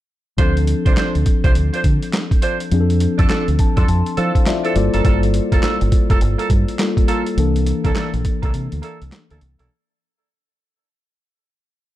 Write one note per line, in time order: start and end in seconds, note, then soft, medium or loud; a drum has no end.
0.38 0.72 D2 loud
0.38 2.67 F3 medium
0.38 2.67 C4 medium
0.38 0.54 D4 medium
0.38 2.68 D4 medium
0.38 0.54 F4 medium
0.38 2.68 A4 medium
0.38 0.54 C5 medium
0.38 kick loud
0.38 closed hi-hat medium
0.57 closed hi-hat medium
0.67 closed hi-hat medium
0.85 0.94 C2 medium
0.85 0.95 D4 medium
0.85 0.95 F4 medium
0.85 0.95 C5 medium
0.85 kick medium
0.85 closed hi-hat soft
0.96 1.12 D4 medium
0.96 1.12 F4 medium
0.96 1.12 C5 medium
0.96 snare loud
0.96 clap medium
0.96 closed hi-hat medium
1.15 1.23 D2 medium
1.15 closed hi-hat soft
1.26 kick medium
1.26 closed hi-hat medium
1.43 1.52 C2 medium
1.43 1.53 D4 medium
1.43 1.53 F4 medium
1.43 1.53 C5 medium
1.43 kick loud
1.43 closed hi-hat soft
1.55 1.68 D2 medium
1.55 closed hi-hat medium
1.73 1.82 D4 medium
1.73 1.82 F4 medium
1.73 1.83 C5 medium
1.73 closed hi-hat medium
1.84 1.97 D3 medium
1.84 kick medium
1.84 closed hi-hat medium
2.02 closed hi-hat medium
2.13 snare loud
2.13 clap medium
2.13 closed hi-hat medium
2.31 kick medium
2.31 closed hi-hat soft
2.42 2.58 D4 medium
2.42 2.58 F4 medium
2.42 2.58 C5 medium
2.42 closed hi-hat medium
2.60 closed hi-hat medium
2.71 3.06 F2 loud
2.71 4.71 F3 medium
2.71 4.72 C4 medium
2.71 4.72 D4 medium
2.71 2.81 G#4 medium
2.71 closed hi-hat medium
2.80 4.19 A4 medium
2.90 closed hi-hat medium
3.00 closed hi-hat medium
3.18 3.27 F2 loud
3.18 3.28 D4 medium
3.18 3.28 F4 medium
3.18 3.28 A4 medium
3.18 kick medium
3.18 closed hi-hat medium
3.29 3.45 D4 medium
3.29 3.45 F4 medium
3.29 3.45 A4 medium
3.29 muted fingered electric bass stroke soft
3.29 snare loud
3.29 clap medium
3.29 closed hi-hat medium
3.48 3.56 D2 medium
3.48 closed hi-hat soft
3.59 3.76 A5 medium
3.59 kick medium
3.59 closed hi-hat medium
3.77 3.85 F2 medium
3.77 3.86 D4 medium
3.77 3.86 F4 medium
3.77 3.86 A4 medium
3.77 3.88 C6 medium
3.77 kick loud
3.77 closed hi-hat soft
3.88 4.01 F2 loud
3.88 4.16 A5 medium
3.88 closed hi-hat medium
4.06 closed hi-hat medium
4.17 4.30 F3 medium
4.17 4.32 D4 medium
4.17 4.45 E4 medium
4.17 4.33 F4 medium
4.17 4.33 A4 medium
4.17 4.45 C5 medium
4.17 4.45 F5 medium
4.17 closed hi-hat medium
4.35 kick medium
4.35 closed hi-hat medium
4.46 4.64 F4 medium
4.46 4.64 D5 medium
4.46 4.74 E5 medium
4.46 snare loud
4.46 clap medium
4.46 closed hi-hat medium
4.64 4.74 D4 medium
4.64 4.93 E4 medium
4.64 4.74 F4 medium
4.64 4.74 A4 medium
4.64 4.93 C5 medium
4.64 closed hi-hat soft
4.75 4.89 G1 loud
4.75 6.75 G3 medium
4.75 6.75 A#3 medium
4.75 6.76 F4 medium
4.75 6.76 A4 medium
4.75 5.03 D5 medium
4.75 closed hi-hat medium
4.93 5.02 F#1 medium
4.93 5.03 A#3 medium
4.93 5.03 F4 medium
4.93 5.03 A4 medium
4.93 closed hi-hat medium
5.04 5.39 G1 loud
5.04 5.20 A#3 medium
5.04 5.20 F4 medium
5.04 5.20 A4 medium
5.04 kick loud
5.04 closed hi-hat medium
5.23 closed hi-hat medium
5.34 closed hi-hat medium
5.51 5.60 F1 medium
5.51 5.61 A#3 medium
5.51 5.61 F4 medium
5.51 5.61 A4 medium
5.51 kick medium
5.51 closed hi-hat medium
5.63 5.78 A#3 medium
5.63 5.78 F4 medium
5.63 5.78 A4 medium
5.63 muted fingered electric bass stroke soft
5.63 snare loud
5.63 clap medium
5.63 closed hi-hat medium
5.81 5.89 G1 medium
5.81 closed hi-hat soft
5.92 kick medium
5.92 closed hi-hat medium
6.10 6.18 F1 medium
6.10 6.19 A#3 medium
6.10 6.19 F4 medium
6.10 6.20 A4 medium
6.10 kick loud
6.10 closed hi-hat soft
6.21 6.34 G1 medium
6.21 closed hi-hat medium
6.39 6.48 A#3 medium
6.39 6.48 F4 medium
6.39 6.49 A4 medium
6.39 closed hi-hat medium
6.50 6.63 G2 medium
6.50 kick medium
6.50 closed hi-hat medium
6.68 closed hi-hat soft
6.79 7.38 G3 medium
6.79 7.37 A#3 soft
6.79 7.38 F4 medium
6.79 7.38 A4 medium
6.79 snare loud
6.79 clap medium
6.79 closed hi-hat medium
6.97 kick medium
6.97 closed hi-hat soft
7.08 7.23 A#3 medium
7.08 7.24 F4 medium
7.08 7.24 A4 medium
7.08 closed hi-hat medium
7.26 closed hi-hat medium
7.37 7.71 C2 loud
7.37 9.66 E3 medium
7.37 9.67 A#3 medium
7.37 9.67 D4 medium
7.37 9.68 A4 medium
7.37 closed hi-hat medium
7.56 closed hi-hat medium
7.66 closed hi-hat medium
7.84 7.93 C2 medium
7.84 7.94 A#3 medium
7.84 7.94 D4 medium
7.84 7.94 E4 medium
7.84 7.94 A4 medium
7.84 kick medium
7.84 closed hi-hat medium
7.95 8.11 A#3 medium
7.95 8.11 D4 medium
7.95 8.11 E4 medium
7.95 8.11 A4 medium
7.95 muted fingered electric bass stroke soft
7.95 snare loud
7.95 clap medium
7.95 closed hi-hat medium
8.14 8.22 A#1 medium
8.14 closed hi-hat soft
8.25 kick medium
8.25 closed hi-hat medium
8.43 8.51 C2 medium
8.43 8.52 A#3 medium
8.43 8.52 D4 medium
8.43 8.52 E4 medium
8.43 8.52 A4 medium
8.43 kick loud
8.43 closed hi-hat soft
8.54 8.67 C3 medium
8.54 closed hi-hat medium
8.72 8.80 D2 medium
8.72 closed hi-hat soft
8.82 8.98 A#3 medium
8.82 8.98 D4 medium
8.82 8.98 E4 medium
8.82 8.99 A4 medium
8.82 closed hi-hat medium
9.01 9.09 C2 medium
9.01 closed hi-hat soft
9.12 snare loud
9.12 clap medium
9.12 closed hi-hat medium
9.30 9.39 D2 medium
9.30 9.39 A#3 medium
9.30 9.40 D4 medium
9.30 9.40 E4 medium
9.30 9.40 A4 medium
9.30 closed hi-hat soft
9.41 9.55 C2 loud
9.41 closed hi-hat medium
9.59 9.68 B1 medium
9.59 9.69 A#3 medium
9.59 9.69 D4 medium
9.59 9.69 E4 medium
9.59 9.69 A4 medium
9.59 closed hi-hat medium